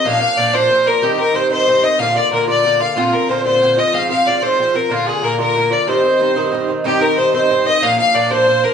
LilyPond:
<<
  \new Staff \with { instrumentName = "Fiddle" } { \time 6/8 \key bes \mixolydian \tempo 4. = 123 f''8 f''8 d''8 c''4 bes'8 | g'8 bes'8 c''8 c''4 ees''8 | f''8 d''8 bes'8 d''4 f''8 | f'8 bes'8 c''8 c''4 ees''8 |
f''8 f''8 d''8 c''4 bes'8 | f'8 aes'8 bes'8 bes'4 d''8 | c''2~ c''8 r8 | g'8 bes'8 c''8 c''4 ees''8 |
f''8 f''8 d''8 c''4 bes'8 | }
  \new Staff \with { instrumentName = "Fiddle" } { \time 6/8 \key bes \mixolydian f''4. c''4 bes'8 | g'8 bes'8 c''8 c''4 ees''8 | f''8 d''8 bes'8 d''4 f''8 | f'8 bes'8 c''8 c''4 ees''8 |
f''8 f''8 d''8 c''4 bes'8 | f'8 aes'8 bes'8 bes'4 d''8 | c''2~ c''8 r8 | g'8 bes'8 c''8 c''4 ees''8 |
f''8 f''8 d''8 c''4. | }
  \new Staff \with { instrumentName = "Bouzouki" } { \time 6/8 \key bes \mixolydian <bes, f bes d'>8 <f bes d'>8 <bes, f bes d'>8 <bes, f bes d'>8 <bes, f bes d'>8 <f bes d'>8 | <g, ees c' ees'>8 <ees c' ees'>8 <g, ees c' ees'>8 <g, ees c' ees'>8 <g, ees c' ees'>8 <ees c' ees'>8 | <bes, d bes f'>8 <d bes f'>8 <bes, d bes f'>8 <bes, d bes f'>8 <bes, d bes f'>8 <d bes f'>8 | <bes, d c' f'>8 <d c' f'>8 <bes, d c' f'>8 <bes, d c' f'>8 <bes, d c' f'>8 <d c' f'>8 |
<aes, f c' f'>8 <f c' f'>8 <aes, f c' f'>8 <aes, f c' f'>8 <aes, f c' f'>8 <f c' f'>8 | <bes, d bes f'>8 <d bes f'>8 <bes, d bes f'>8 <bes, d bes f'>8 <bes, d bes f'>8 <d bes f'>8 | <g, ees c' ees'>8 <ees c' ees'>8 <g, ees c' ees'>8 <g, ees c' ees'>8 <g, ees c' ees'>8 <ees c' ees'>8 | <g, ees c' ees'>8 <ees c' ees'>8 <g, ees c' ees'>8 <g, ees c' ees'>8 <g, ees c' ees'>8 <ees c' ees'>8 |
<bes, f bes d'>8 <f bes d'>8 <bes, f bes d'>8 <bes, f bes d'>8 <bes, f bes d'>8 <f bes d'>8 | }
>>